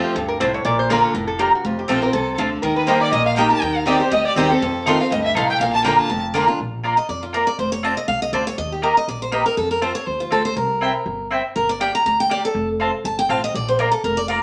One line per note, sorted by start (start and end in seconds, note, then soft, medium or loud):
0.00 0.13 F2 medium
0.00 0.14 F3 medium
0.00 0.14 A3 medium
0.00 0.15 C4 medium
0.00 0.15 F4 medium
0.00 0.15 G4 medium
0.15 0.36 D2 medium
0.15 0.39 G2 medium
0.15 0.28 A4 medium
0.28 0.40 A#4 medium
0.40 0.61 C2 medium
0.40 0.64 A2 medium
0.40 0.50 C4 medium
0.40 0.50 F4 loud
0.40 0.53 C5 medium
0.40 0.50 C5 loud
0.40 0.51 A5 loud
0.54 0.65 C#5 loud
0.65 0.98 A#1 medium
0.65 1.12 A#2 medium
0.65 0.78 D5 loud
0.79 0.90 C5 loud
0.89 1.14 D3 medium
0.89 0.99 A#3 medium
0.89 1.14 A#3 medium
0.89 1.14 D4 medium
0.89 1.00 F4 loud
0.89 1.15 F4 loud
0.89 1.03 A#4 medium
0.89 1.00 D5 loud
0.89 1.00 A#5 loud
1.04 1.15 A4 medium
1.14 1.48 F1 medium
1.14 1.38 A2 medium
1.14 1.27 A#4 medium
1.27 1.39 A4 medium
1.39 1.63 G2 medium
1.39 1.49 A#3 medium
1.39 1.49 F4 medium
1.39 1.53 G4 medium
1.39 1.49 D5 medium
1.39 1.50 A#5 loud
1.55 1.65 F#4 medium
1.64 1.81 F1 medium
1.64 2.12 F2 medium
1.64 1.78 F4 medium
1.79 1.89 G4 medium
1.88 2.10 A#1 medium
1.88 2.02 F3 medium
1.88 2.02 A3 medium
1.88 1.98 C4 loud
1.88 2.02 C4 loud
1.88 1.99 F4 medium
1.88 2.01 F4 loud
1.88 2.02 A4 medium
1.88 1.99 C5 loud
1.88 1.99 A5 loud
2.02 2.14 C4 soft
2.02 2.13 F4 medium
2.02 2.13 A#4 loud
2.13 2.35 C2 medium
2.13 2.37 C3 medium
2.13 2.36 A4 medium
2.13 2.37 A4 medium
2.38 2.60 D2 medium
2.38 2.62 D3 medium
2.38 2.48 C4 medium
2.38 2.49 F4 loud
2.38 2.49 C5 loud
2.38 2.49 A5 loud
2.62 2.97 D#2 medium
2.62 3.10 D#3 medium
2.62 2.76 A#4 medium
2.76 2.87 B4 medium
2.87 3.11 G3 medium
2.87 3.11 A#3 medium
2.87 2.98 A#3 medium
2.87 3.12 D#4 medium
2.87 2.98 G4 medium
2.87 3.12 G4 medium
2.87 3.00 C5 medium
2.87 3.01 C5 medium
2.87 2.98 D#5 loud
2.87 2.98 A#5 loud
3.01 3.11 D5 medium
3.01 3.12 D5 medium
3.12 3.46 A#1 medium
3.12 3.60 A#2 loud
3.12 3.25 D#5 medium
3.26 3.36 F5 medium
3.26 3.36 F5 loud
3.36 3.50 G3 medium
3.36 3.47 A#3 medium
3.36 3.50 A#3 medium
3.36 3.51 D#4 medium
3.36 3.47 G4 loud
3.36 3.49 G4 loud
3.36 3.48 D#5 loud
3.36 3.50 G5 loud
3.36 3.50 G5 medium
3.36 3.48 A#5 loud
3.50 3.62 D#4 medium
3.50 3.62 G4 medium
3.50 3.62 A5 loud
3.50 3.63 A5 loud
3.62 3.95 D#2 medium
3.62 3.84 D#3 medium
3.62 3.78 G5 medium
3.62 3.75 G5 loud
3.75 3.86 F5 medium
3.75 3.87 F5 medium
3.86 3.99 D#3 medium
3.86 4.00 G3 medium
3.86 3.97 C4 medium
3.86 4.00 C4 medium
3.86 3.97 G4 loud
3.86 3.98 G4 medium
3.86 4.00 D5 medium
3.86 3.97 D#5 medium
3.86 3.97 G5 loud
4.00 4.12 C4 soft
4.00 4.11 G4 medium
4.00 4.12 C5 medium
4.00 4.11 C5 medium
4.11 4.33 D2 medium
4.11 4.36 G3 medium
4.11 4.24 D#5 medium
4.11 4.25 D#5 medium
4.25 4.36 D5 loud
4.25 4.36 D5 medium
4.36 4.57 D#2 medium
4.36 4.50 D#3 loud
4.36 4.50 G3 medium
4.36 4.46 C4 loud
4.36 4.50 C4 loud
4.36 4.47 G4 medium
4.36 4.49 G4 loud
4.36 4.50 C5 medium
4.36 4.47 D#5 medium
4.36 4.47 G5 loud
4.50 4.62 C4 medium
4.50 4.61 G4 medium
4.50 4.84 A4 medium
4.61 4.95 F2 medium
4.61 5.09 F2 medium
4.86 4.99 D#3 medium
4.86 5.00 A3 medium
4.86 5.00 C4 medium
4.86 4.96 D#4 medium
4.86 4.99 F4 medium
4.86 4.96 A4 medium
4.86 4.97 F5 loud
4.86 4.97 C6 loud
5.00 5.12 C4 soft
5.00 5.11 F4 medium
5.00 5.10 F5 medium
5.00 5.11 F5 loud
5.11 5.32 D2 medium
5.11 5.35 G2 loud
5.11 5.23 D#5 medium
5.11 5.25 D#5 medium
5.24 5.37 E5 medium
5.24 5.36 E5 medium
5.35 5.57 C2 medium
5.35 5.60 A2 loud
5.35 5.45 D#4 loud
5.35 5.46 A4 loud
5.35 5.48 F5 medium
5.35 5.46 F5 loud
5.35 5.50 F5 medium
5.35 5.46 C6 loud
5.49 5.60 G5 loud
5.49 5.61 G5 loud
5.60 5.93 A#1 medium
5.60 6.08 A#2 medium
5.60 5.72 F5 medium
5.60 5.74 F5 medium
5.73 5.84 A5 loud
5.73 5.85 A5 loud
5.84 6.09 D3 medium
5.84 5.95 A#3 medium
5.84 6.09 A#3 medium
5.84 6.09 D4 medium
5.84 5.95 F4 loud
5.84 6.10 F4 medium
5.84 5.95 D5 loud
5.84 5.97 G5 medium
5.84 5.98 G5 medium
5.84 5.95 A#5 loud
5.98 6.22 A5 medium
5.98 6.22 A5 loud
6.10 6.43 F1 medium
6.10 6.57 F2 medium
6.34 6.47 D3 medium
6.34 6.44 A#3 loud
6.34 6.48 A#3 medium
6.34 6.48 D4 loud
6.34 6.45 F4 loud
6.34 6.46 F4 medium
6.34 6.45 D5 medium
6.34 6.45 A#5 loud
6.48 6.60 D4 soft
6.48 6.59 F4 medium
6.60 6.93 A#1 medium
6.84 6.94 A#3 medium
6.84 6.94 F4 medium
6.84 6.94 D5 medium
6.84 6.95 A#5 loud
6.97 7.09 D#5 medium
7.09 7.42 F2 medium
7.09 7.22 D5 medium
7.23 7.34 F4 medium
7.33 7.43 A#3 medium
7.33 7.44 F4 medium
7.33 7.47 A#4 medium
7.33 7.44 D5 medium
7.33 7.44 A#5 loud
7.47 7.58 D5 loud
7.59 7.92 F1 medium
7.59 7.72 C5 medium
7.72 7.84 C#5 loud
7.83 7.93 C4 loud
7.83 7.94 F4 medium
7.83 7.94 C5 medium
7.83 7.97 D5 medium
7.83 7.94 A5 loud
7.97 8.08 D#5 loud
8.08 8.30 C2 medium
8.08 8.21 F5 loud
8.22 8.32 D#5 loud
8.32 8.54 D2 medium
8.32 8.43 C4 medium
8.32 8.43 F4 loud
8.32 8.43 C5 medium
8.32 8.46 D5 medium
8.32 8.44 A5 loud
8.47 8.58 C#5 loud
8.58 8.91 D#2 medium
8.58 8.71 D#5 loud
8.72 8.83 G4 medium
8.82 8.92 A#3 medium
8.82 8.93 G4 medium
8.82 8.96 A#4 medium
8.82 8.93 D#5 loud
8.82 8.93 A#5 loud
8.97 9.08 D#5 loud
9.08 9.41 A#1 medium
9.08 9.21 D5 medium
9.22 9.32 C5 medium
9.32 9.42 A#3 medium
9.32 9.42 G4 medium
9.32 9.45 B4 medium
9.32 9.43 D#5 medium
9.32 9.43 A#5 loud
9.46 9.57 A#4 medium
9.57 9.91 F2 medium
9.57 9.70 A4 medium
9.71 9.82 A#4 medium
9.81 9.92 C4 medium
9.81 9.92 F4 loud
9.81 9.92 C5 loud
9.81 9.94 C5 medium
9.81 9.92 A5 loud
9.95 10.07 C#5 loud
10.07 10.28 D#2 medium
10.07 10.20 C5 medium
10.20 10.31 F4 medium
10.30 10.53 D2 medium
10.30 10.41 C4 medium
10.30 10.41 F4 medium
10.30 10.45 A4 medium
10.30 10.42 C5 loud
10.30 10.42 A5 loud
10.45 10.56 C5 loud
10.56 10.90 C2 medium
10.56 11.27 A#4 medium
10.81 10.91 C4 medium
10.81 10.91 E4 medium
10.81 10.92 C5 loud
10.81 10.92 G5 loud
11.06 11.39 G1 medium
11.31 11.41 C4 medium
11.31 11.41 E4 loud
11.31 11.41 C5 medium
11.31 11.41 G5 medium
11.56 11.89 G1 medium
11.56 11.69 A#4 medium
11.69 11.80 D5 loud
11.80 11.90 A#3 medium
11.80 11.91 G4 loud
11.80 11.91 D5 loud
11.80 11.94 G5 medium
11.80 11.91 G5 loud
11.95 12.05 A#5 loud
12.06 12.39 D2 medium
12.06 12.19 A#5 medium
12.20 12.30 G5 loud
12.30 12.40 A#3 medium
12.30 12.40 G4 medium
12.30 12.40 D5 medium
12.30 12.44 D5 medium
12.30 12.41 G5 loud
12.45 12.67 A4 medium
12.55 12.88 F1 loud
12.80 12.90 C4 loud
12.80 12.90 F4 loud
12.80 12.90 C5 loud
12.80 12.90 A5 loud
13.04 13.26 G1 medium
13.04 13.18 A5 loud
13.19 13.30 G5 loud
13.29 13.50 A1 medium
13.29 13.39 C4 medium
13.29 13.39 F4 medium
13.29 13.40 C5 loud
13.29 13.43 F5 medium
13.29 13.40 A5 loud
13.44 13.54 D#5 loud
13.54 13.88 A#1 medium
13.54 13.68 D5 medium
13.68 13.78 C5 loud
13.79 13.89 A#3 medium
13.79 13.89 F4 medium
13.79 13.91 A#4 medium
13.79 13.89 D5 loud
13.79 13.90 A#5 loud
13.92 14.03 A4 medium
14.04 14.37 F1 medium
14.04 14.17 A#4 medium
14.17 14.28 D5 loud
14.28 14.39 A#3 medium
14.28 14.39 F4 medium
14.28 14.39 D5 loud
14.28 14.41 F5 loud
14.28 14.40 A#5 loud